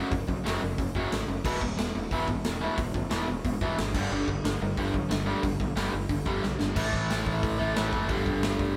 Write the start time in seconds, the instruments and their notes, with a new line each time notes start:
Already playing: overdriven electric guitar F#2 C#3 F#3
0.11 picked electric bass F#1, overdriven electric guitar F#2 C#3, kick, open hi-hat
0.28 picked electric bass B1, overdriven electric guitar F#2 C#3, kick
0.44 picked electric bass F#1, overdriven electric guitar F#2 C#3 F#3, snare, open hi-hat
0.62 picked electric bass F#1, overdriven electric guitar F#2 C#3
0.78 picked electric bass F#1, overdriven electric guitar F#2 C#3, kick, open hi-hat
0.95 picked electric bass F#1, overdriven electric guitar F#2 C#3 F#3, kick
1.12 picked electric bass A1, overdriven electric guitar F#2 C#3, snare, open hi-hat
1.28 picked electric bass F#1, overdriven electric guitar F#2 C#3
1.44 picked electric bass E1, overdriven electric guitar E2 B2 E3, kick, crash
1.61 picked electric bass E1, overdriven electric guitar E2 B2, kick
1.77 picked electric bass E1, overdriven electric guitar E2 B2, snare, open hi-hat
1.95 picked electric bass E1, overdriven electric guitar E2 B2
2.11 picked electric bass E1, overdriven electric guitar E2 B2 E3, kick, open hi-hat
2.28 picked electric bass A1, overdriven electric guitar E2 B2, kick
2.44 picked electric bass E1, overdriven electric guitar E2 B2, snare, open hi-hat
2.61 overdriven electric guitar E2 B2 E3
2.78 picked electric bass E1, overdriven electric guitar E2 B2, kick, open hi-hat
2.94 picked electric bass A1, overdriven electric guitar E2 B2, kick
3.10 picked electric bass E1, overdriven electric guitar E2 B2 E3, snare, open hi-hat
3.27 picked electric bass E1, overdriven electric guitar E2 B2
3.45 picked electric bass E1, overdriven electric guitar E2 B2, kick, open hi-hat
3.61 picked electric bass E1, overdriven electric guitar E2 B2 E3, kick
3.78 picked electric bass G#1, overdriven electric guitar E2 B2, snare, open hi-hat
3.94 picked electric bass G1, overdriven electric guitar G2 D3 G3, kick, crash
4.11 picked electric bass G1, overdriven electric guitar G2 D3 G3
4.28 picked electric bass G1, overdriven electric guitar G2 D3, kick
4.44 picked electric bass G1, overdriven electric guitar G2 D3, snare, open hi-hat
4.61 picked electric bass G1, overdriven electric guitar G2 D3
4.77 picked electric bass G1, overdriven electric guitar G2 D3 G3, kick, open hi-hat
4.94 picked electric bass B1, overdriven electric guitar G2 D3, kick
5.10 picked electric bass G1, overdriven electric guitar G2 D3, snare, open hi-hat
5.26 overdriven electric guitar G2 D3 G3
5.43 picked electric bass G1, overdriven electric guitar G2 D3, kick, open hi-hat
5.60 picked electric bass B1, overdriven electric guitar G2 D3, kick
5.76 picked electric bass G1, overdriven electric guitar G2 D3 G3, snare, open hi-hat
5.93 picked electric bass G1, overdriven electric guitar G2 D3
6.09 picked electric bass G1, overdriven electric guitar G2 D3, kick, open hi-hat
6.26 picked electric bass G1, overdriven electric guitar G2 D3 G3, kick
6.43 picked electric bass B1, overdriven electric guitar G2 D3, snare
6.60 picked electric bass G1, overdriven electric guitar G2 D3, snare
6.75 picked electric bass A1, overdriven electric guitar A2 E3 A3, kick, crash
6.93 picked electric bass A1, kick
7.10 picked electric bass A1, snare, open hi-hat
7.26 picked electric bass A1, kick
7.43 picked electric bass A1, kick, open hi-hat
7.59 picked electric bass A1, overdriven electric guitar A2 E3 A3
7.75 picked electric bass A1, overdriven electric guitar A2 E3 A3, snare, open hi-hat
7.93 picked electric bass F#1, kick
8.08 picked electric bass G1, overdriven electric guitar G2 D3 G3, kick, open hi-hat
8.26 picked electric bass G1, kick
8.43 picked electric bass G1, snare, open hi-hat
8.59 picked electric bass G1, kick